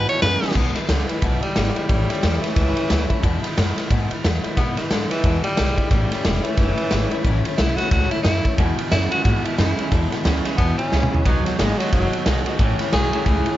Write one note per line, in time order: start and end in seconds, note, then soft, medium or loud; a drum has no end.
0.00 0.19 E2 medium
0.00 0.20 B2 medium
0.08 0.20 E3 soft
0.08 0.21 G#3 soft
0.08 0.22 B3 soft
0.08 0.22 E4 soft
0.08 0.22 C#5 loud
0.08 muted upright bass stroke medium
0.08 ride medium
0.21 0.40 E2 loud
0.21 0.42 F#2 medium
0.21 0.40 C#3 loud
0.21 0.42 E3 medium
0.21 0.42 G#3 medium
0.21 0.42 B3 medium
0.21 0.41 E4 medium
0.21 0.55 B4 loud
0.21 snare loud
0.21 ride medium
0.42 0.55 E2 medium
0.42 0.55 C#3 medium
0.42 0.55 E3 soft
0.42 0.56 G#3 medium
0.42 0.56 B3 medium
0.42 0.55 E4 medium
0.42 muted upright bass stroke medium
0.42 snare medium
0.51 snare medium
0.55 0.75 B1 loud
0.55 0.76 E2 medium
0.55 0.76 B2 medium
0.55 0.76 E3 medium
0.55 0.76 G#3 medium
0.55 0.76 B3 medium
0.55 0.75 B3 medium
0.55 0.74 E4 loud
0.55 kick loud
0.55 snare soft
0.55 crash medium
0.75 0.90 E3 medium
0.75 0.89 E3 soft
0.75 0.89 G#3 soft
0.75 0.90 B3 soft
0.75 0.89 E4 soft
0.75 muted upright bass stroke medium
0.75 snare soft
0.75 ride medium
0.89 1.09 C#2 loud
0.89 1.09 D3 medium
0.89 1.10 E3 medium
0.89 1.10 G#3 medium
0.89 1.10 B3 medium
0.89 snare loud
0.89 ride loud
0.93 1.08 E4 medium
1.08 1.41 E3 medium
1.08 1.22 G#3 medium
1.08 1.23 B3 soft
1.08 1.23 E4 medium
1.08 muted upright bass stroke medium
1.08 ride medium
1.12 1.21 E3 soft
1.22 1.42 B1 medium
1.22 1.42 E2 medium
1.22 1.43 B2 medium
1.22 1.43 E3 medium
1.22 1.42 G#3 medium
1.22 1.42 B3 medium
1.22 1.41 E4 loud
1.22 kick loud
1.22 ride medium
1.42 1.53 E3 soft
1.42 1.88 G3 medium
1.42 1.55 G#3 soft
1.42 1.56 B3 soft
1.42 1.56 E4 soft
1.42 muted upright bass stroke medium
1.42 ride medium
1.54 1.76 G#1 medium
1.54 1.75 E3 medium
1.54 1.76 G#3 medium
1.54 1.75 B3 medium
1.54 1.74 E4 medium
1.54 snare loud
1.54 ride medium
1.75 1.88 E3 medium
1.75 1.90 G#3 medium
1.75 1.89 B3 medium
1.75 1.89 E4 medium
1.75 muted upright bass stroke medium
1.75 ride medium
1.89 2.09 A1 medium
1.89 2.09 A2 medium
1.89 2.10 E3 medium
1.89 2.44 G3 medium
1.89 2.10 A3 medium
1.89 2.10 C#4 medium
1.89 2.08 E4 medium
1.89 kick loud
1.89 ride medium
2.09 2.22 A3 soft
2.09 2.23 C#4 soft
2.09 2.23 E4 medium
2.09 muted upright bass stroke medium
2.09 snare soft
2.09 ride medium
2.22 2.43 E2 loud
2.22 2.43 E3 medium
2.22 2.44 A3 medium
2.22 2.42 C#4 medium
2.22 2.41 E4 medium
2.22 snare loud
2.22 ride loud
2.42 3.40 E3 loud
2.42 2.56 A3 soft
2.42 2.56 C#4 medium
2.42 2.56 E4 medium
2.42 muted upright bass stroke medium
2.42 snare soft
2.42 ride medium
2.56 2.76 C#2 medium
2.56 2.77 A2 medium
2.56 2.77 E3 medium
2.56 2.77 A3 medium
2.56 2.77 C#4 medium
2.56 2.75 E4 medium
2.56 kick loud
2.56 snare soft
2.56 ride medium
2.76 2.89 A3 soft
2.76 2.90 C#4 soft
2.76 2.90 E4 soft
2.76 muted upright bass stroke medium
2.76 ride medium
2.89 3.10 D2 loud
2.89 3.10 E3 medium
2.89 3.10 A3 medium
2.89 3.10 C#4 medium
2.89 3.08 E4 medium
2.89 snare loud
2.89 ride medium
3.10 3.23 A3 soft
3.10 3.24 C#4 medium
3.10 3.23 E4 medium
3.10 muted upright bass stroke medium
3.10 kick medium
3.10 ride medium
3.23 3.43 E2 loud
3.23 3.44 B2 medium
3.23 3.44 E3 medium
3.23 3.44 G#3 medium
3.23 3.42 B3 loud
3.23 3.41 E4 loud
3.23 kick loud
3.23 ride medium
3.42 3.55 E3 soft
3.42 3.56 G#3 medium
3.42 3.57 B3 medium
3.42 3.56 E4 medium
3.42 muted upright bass stroke medium
3.42 snare soft
3.42 ride medium
3.57 3.77 F#2 loud
3.57 3.77 E3 medium
3.57 3.77 G#3 medium
3.57 3.77 B3 medium
3.57 3.75 E4 medium
3.57 snare loud
3.57 ride medium
3.76 3.90 E3 medium
3.76 3.91 G#3 medium
3.76 3.91 B3 medium
3.76 3.90 E4 medium
3.76 muted upright bass stroke medium
3.76 snare soft
3.76 ride medium
3.90 4.11 E2 medium
3.90 4.10 G#2 medium
3.90 4.11 B2 medium
3.90 4.11 E3 medium
3.90 4.11 G#3 medium
3.90 4.10 B3 medium
3.90 4.09 E4 loud
3.90 kick loud
3.90 snare soft
3.90 ride medium
4.11 4.23 E3 soft
4.11 4.24 G#3 soft
4.11 4.25 B3 soft
4.11 4.24 E4 soft
4.11 muted upright bass stroke medium
4.11 ride medium
4.24 4.44 E2 medium
4.24 4.44 E3 medium
4.24 4.44 G#3 medium
4.24 4.44 B3 medium
4.24 4.42 E4 medium
4.24 snare loud
4.24 ride medium
4.44 4.57 E3 medium
4.44 4.57 G#3 medium
4.44 4.57 B3 medium
4.44 4.57 E4 medium
4.44 muted upright bass stroke medium
4.44 ride medium
4.57 4.78 E2 medium
4.57 4.77 B2 medium
4.57 4.78 E3 medium
4.57 4.78 G#3 medium
4.57 4.77 B3 medium
4.57 4.76 E4 medium
4.57 kick loud
4.57 snare soft
4.57 ride medium
4.77 4.91 E3 medium
4.77 4.89 E3 soft
4.77 4.90 G#3 soft
4.77 4.91 B3 soft
4.77 4.91 E4 medium
4.77 muted upright bass stroke medium
4.77 snare soft
4.77 ride medium
4.90 5.10 G#2 medium
4.90 5.10 D3 medium
4.90 5.11 E3 medium
4.90 5.11 G#3 medium
4.90 5.10 B3 medium
4.90 5.09 E4 medium
4.90 snare loud
4.90 ride medium
5.10 5.43 E3 loud
5.10 5.23 E3 soft
5.10 5.23 G#3 medium
5.10 5.23 B3 medium
5.10 5.24 E4 medium
5.10 muted upright bass stroke soft
5.10 snare soft
5.10 ride medium
5.23 5.44 E2 medium
5.23 5.44 B2 medium
5.23 5.44 E3 medium
5.23 5.45 G#3 medium
5.23 5.44 B3 medium
5.23 5.43 E4 medium
5.23 kick loud
5.23 ride medium
5.44 5.55 E3 soft
5.44 5.89 G3 loud
5.44 5.56 G#3 soft
5.44 5.57 B3 soft
5.44 5.58 E4 soft
5.44 muted upright bass stroke medium
5.44 ride medium
5.56 5.77 B1 medium
5.56 5.77 E3 medium
5.56 5.78 G#3 medium
5.56 5.77 B3 medium
5.56 5.76 E4 medium
5.56 snare loud
5.56 ride loud
5.77 5.91 E3 medium
5.77 5.91 G#3 medium
5.77 5.91 B3 medium
5.77 5.91 E4 medium
5.77 muted upright bass stroke medium
5.77 kick medium
5.77 ride medium
5.91 6.11 A1 medium
5.91 6.11 A2 medium
5.91 6.12 E3 medium
5.91 6.45 G3 medium
5.91 6.12 A3 medium
5.91 6.11 C#4 medium
5.91 6.09 E4 medium
5.91 kick loud
5.91 snare soft
5.91 ride medium
6.11 6.24 A3 soft
6.11 6.24 C#4 soft
6.11 6.24 E4 medium
6.11 muted upright bass stroke medium
6.11 snare soft
6.11 ride medium
6.24 6.44 E1 loud
6.24 6.45 E3 medium
6.24 6.45 A3 medium
6.24 6.44 C#4 medium
6.24 6.42 E4 medium
6.24 snare loud
6.24 ride medium
6.44 7.42 E3 loud
6.44 6.57 A3 soft
6.44 6.58 C#4 medium
6.44 6.58 E4 medium
6.44 muted upright bass stroke medium
6.44 ride medium
6.57 6.77 F#1 medium
6.57 6.78 A2 medium
6.57 6.78 E3 medium
6.57 6.78 A3 medium
6.57 6.78 C#4 medium
6.57 6.76 E4 medium
6.57 kick loud
6.57 snare soft
6.57 ride medium
6.78 6.90 A3 soft
6.78 6.92 C#4 soft
6.78 6.91 E4 medium
6.78 muted upright bass stroke medium
6.78 ride medium
6.90 7.11 G#1 medium
6.90 7.11 E3 medium
6.90 7.12 A3 medium
6.90 7.12 C#4 medium
6.90 7.10 E4 medium
6.90 snare loud
6.90 ride medium
7.11 7.25 A3 medium
7.11 7.26 C#4 medium
7.11 7.25 E4 medium
7.11 muted upright bass stroke medium
7.11 ride medium
7.24 7.44 A1 loud
7.24 7.45 A2 medium
7.24 7.46 E3 loud
7.24 7.46 A3 loud
7.24 7.46 C#4 loud
7.24 7.44 E4 loud
7.24 kick loud
7.24 ride medium
7.45 7.59 A3 soft
7.45 7.60 C#4 medium
7.45 7.59 E4 medium
7.45 muted upright bass stroke medium
7.45 ride medium
7.57 7.78 B1 loud
7.57 7.79 E3 medium
7.57 7.79 A3 medium
7.57 7.78 E4 medium
7.57 snare loud
7.57 ride medium
7.61 7.79 C#4 medium
7.61 7.78 E4 medium
7.76 7.92 E4 medium
7.76 7.90 F#4 loud
7.76 muted upright bass stroke medium
7.76 snare soft
7.76 ride medium
7.81 7.92 A3 soft
7.81 7.93 C#4 medium
7.91 8.11 C#2 medium
7.91 8.12 A2 medium
7.91 8.13 E3 medium
7.91 8.13 A3 medium
7.91 8.13 C#4 medium
7.91 8.11 E4 medium
7.91 8.11 F#4 medium
7.91 kick loud
7.91 snare soft
7.91 ride medium
8.11 8.25 C#4 soft
8.11 8.22 E4 medium
8.11 8.25 E4 soft
8.11 muted upright bass stroke medium
8.11 ride medium
8.15 8.24 A3 soft
8.23 8.45 F#2 medium
8.23 8.45 E3 medium
8.23 8.46 A3 medium
8.23 8.45 C#4 medium
8.23 8.57 E4 loud
8.23 snare loud
8.23 ride medium
8.28 8.43 E4 medium
8.44 8.59 A3 medium
8.44 8.59 C#4 medium
8.44 8.58 E4 medium
8.44 muted upright bass stroke medium
8.44 kick medium
8.44 ride medium
8.58 8.78 E2 medium
8.58 8.78 E2 loud
8.58 8.89 E2 medium
8.58 8.78 B2 medium
8.58 8.90 B2 medium
8.58 8.79 E3 medium
8.58 8.78 G#3 medium
8.58 8.78 B3 medium
8.58 8.77 E4 medium
8.58 kick loud
8.58 ride medium
8.78 8.90 E3 soft
8.78 8.91 G#3 medium
8.78 8.92 B3 medium
8.78 8.92 E4 medium
8.78 muted upright bass stroke medium
8.78 ride medium
8.91 9.10 E2 medium
8.91 9.11 F#2 loud
8.91 9.10 C#3 medium
8.91 9.12 E3 medium
8.91 9.12 G#3 medium
8.91 9.11 B3 medium
8.91 9.10 E4 loud
8.91 9.09 E4 medium
8.91 snare loud
8.91 ride loud
9.10 9.24 E2 medium
9.10 9.24 C#3 medium
9.10 9.24 E3 soft
9.10 9.24 G#3 soft
9.10 9.24 B3 soft
9.10 9.25 E4 medium
9.10 9.23 F#4 loud
9.10 muted upright bass stroke medium
9.10 ride medium
9.24 9.45 E2 medium
9.24 9.56 E2 medium
9.24 9.45 G#2 loud
9.24 9.45 B2 medium
9.24 9.56 B2 medium
9.24 9.45 E3 medium
9.24 9.45 G#3 medium
9.24 9.45 B3 medium
9.24 9.43 E4 medium
9.24 9.47 F#4 medium
9.24 kick loud
9.24 snare soft
9.24 ride medium
9.44 9.56 E3 soft
9.44 9.57 G#3 soft
9.44 9.58 B3 soft
9.44 9.58 E4 soft
9.44 9.57 E4 medium
9.44 muted upright bass stroke medium
9.44 ride medium
9.57 9.77 E2 medium
9.57 9.78 F#2 medium
9.57 9.77 C#3 loud
9.57 9.78 E3 medium
9.57 9.79 G#3 medium
9.57 9.78 B3 medium
9.57 9.91 E4 medium
9.57 9.77 E4 medium
9.57 snare loud
9.57 ride medium
9.78 9.90 E2 medium
9.78 9.91 C#3 medium
9.78 9.91 E3 medium
9.78 9.91 G#3 medium
9.78 9.91 B3 medium
9.78 9.92 E4 medium
9.78 muted upright bass stroke medium
9.78 ride medium
9.91 10.12 E2 medium
9.91 10.23 E2 medium
9.91 10.12 E2 medium
9.91 10.12 B2 medium
9.91 10.23 B2 medium
9.91 10.12 E3 medium
9.91 10.12 G#3 medium
9.91 10.11 B3 medium
9.91 10.09 E4 medium
9.91 kick loud
9.91 snare soft
9.91 ride medium
10.11 10.23 E3 medium
10.11 10.24 G#3 medium
10.11 10.25 B3 medium
10.11 10.25 E4 medium
10.11 muted upright bass stroke medium
10.11 snare soft
10.11 ride medium
10.24 10.45 D2 loud
10.24 10.43 E2 medium
10.24 10.43 C#3 medium
10.24 10.45 E3 medium
10.24 10.45 G#3 medium
10.24 10.45 B3 medium
10.24 10.44 E4 medium
10.24 snare loud
10.24 ride medium
10.45 10.56 E2 medium
10.45 10.57 C#3 medium
10.45 10.58 E3 soft
10.45 10.58 G#3 medium
10.45 10.59 B3 medium
10.45 10.59 E4 medium
10.45 muted upright bass stroke medium
10.45 snare soft
10.45 ride medium
10.58 10.89 E2 medium
10.58 10.79 E2 medium
10.58 10.78 E2 medium
10.58 10.89 B2 medium
10.58 10.79 B2 medium
10.58 10.79 E3 medium
10.58 10.79 G#3 medium
10.58 10.78 B3 medium
10.58 10.79 B3 medium
10.58 10.78 E4 medium
10.58 kick loud
10.58 snare soft
10.58 ride medium
10.78 10.91 E3 soft
10.78 10.93 G#3 soft
10.78 10.93 B3 soft
10.78 11.27 C#4 medium
10.78 10.92 E4 soft
10.78 muted upright bass stroke medium
10.78 ride medium
10.92 11.12 C#2 medium
10.92 11.10 E2 medium
10.92 11.10 C#3 medium
10.92 11.12 E3 medium
10.92 11.13 G#3 medium
10.92 11.13 B3 medium
10.92 11.12 E4 medium
10.92 snare medium
11.03 mid tom medium
11.12 11.24 E2 medium
11.12 11.24 C#3 medium
11.12 11.26 B3 medium
11.12 11.26 E4 medium
11.12 muted upright bass stroke medium
11.12 floor tom medium
11.16 11.26 E3 soft
11.16 11.27 G#3 medium
11.25 11.45 B1 medium
11.25 11.56 B2 medium
11.25 11.46 B2 medium
11.25 11.56 F#3 loud
11.25 11.46 F#3 medium
11.25 11.47 B3 medium
11.25 11.46 B3 medium
11.25 11.46 D#4 medium
11.25 11.45 F#4 medium
11.25 kick loud
11.25 ride medium
11.45 11.58 F#3 medium
11.45 11.58 B3 soft
11.45 11.60 D#4 soft
11.45 11.59 F#4 medium
11.45 muted upright bass stroke medium
11.45 snare soft
11.45 ride medium
11.58 11.79 G#1 loud
11.58 11.77 B2 medium
11.58 11.79 F#3 medium
11.58 11.80 G#3 medium
11.58 11.77 G#3 medium
11.58 11.79 B3 medium
11.58 11.80 D#4 medium
11.58 11.79 F#4 medium
11.58 snare loud
11.58 ride loud
11.79 11.91 B2 medium
11.79 11.92 F#3 loud
11.79 11.91 G#3 medium
11.79 11.94 D#4 soft
11.79 11.93 F#4 medium
11.79 muted upright bass stroke medium
11.79 snare soft
11.79 ride medium
11.83 11.93 B3 soft
11.92 12.12 F#1 loud
11.92 12.23 B2 medium
11.92 12.13 B2 medium
11.92 12.23 F#3 medium
11.92 12.25 F#3 loud
11.92 12.13 F#3 medium
11.92 12.13 B3 medium
11.92 12.13 D#4 medium
11.92 12.11 F#4 medium
11.92 kick loud
11.92 snare soft
11.92 ride medium
12.13 12.27 B3 soft
12.13 12.27 D#4 soft
12.13 12.26 F#4 soft
12.13 muted upright bass stroke medium
12.13 ride medium
12.26 12.45 B1 medium
12.26 12.44 B2 loud
12.26 12.46 F#3 medium
12.26 12.44 G#3 loud
12.26 12.47 B3 medium
12.26 12.47 D#4 medium
12.26 12.46 F#4 medium
12.26 snare loud
12.26 ride medium
12.46 12.58 B2 medium
12.46 12.58 G#3 medium
12.46 12.60 D#4 medium
12.46 12.59 F#4 medium
12.46 muted upright bass stroke medium
12.46 ride medium
12.50 12.60 B3 medium
12.59 12.79 A1 medium
12.59 12.79 A2 loud
12.59 12.90 A2 medium
12.59 12.80 E3 medium
12.59 12.90 E3 medium
12.59 12.80 A3 medium
12.59 12.80 C#4 loud
12.59 12.79 E4 loud
12.59 kick loud
12.59 ride medium
12.79 12.94 C#4 medium
12.79 12.93 E4 medium
12.79 muted upright bass stroke medium
12.79 snare soft
12.79 ride medium
12.83 12.93 A3 soft
12.93 13.12 B1 loud
12.93 13.11 A2 medium
12.93 13.13 E3 medium
12.93 13.11 F#3 loud
12.93 13.14 A3 medium
12.93 13.13 C#4 medium
12.93 13.12 E4 medium
12.93 13.25 G#4 loud
12.93 snare loud
12.93 ride medium
13.13 13.25 A2 medium
13.13 13.25 F#3 medium
13.13 13.26 A3 soft
13.13 13.27 C#4 medium
13.13 13.26 E4 medium
13.13 muted upright bass stroke medium
13.13 ride medium
13.26 13.45 C#2 medium
13.26 13.46 A2 medium
13.26 13.57 A2 medium
13.26 13.47 E3 medium
13.26 13.57 E3 medium
13.26 13.47 A3 medium
13.26 13.47 C#4 medium
13.26 13.45 E4 medium
13.26 13.57 G#4 medium
13.26 kick loud
13.26 ride medium
13.46 13.57 C#4 soft
13.46 13.57 E4 soft
13.46 muted upright bass stroke medium
13.46 ride medium
13.50 13.57 A3 soft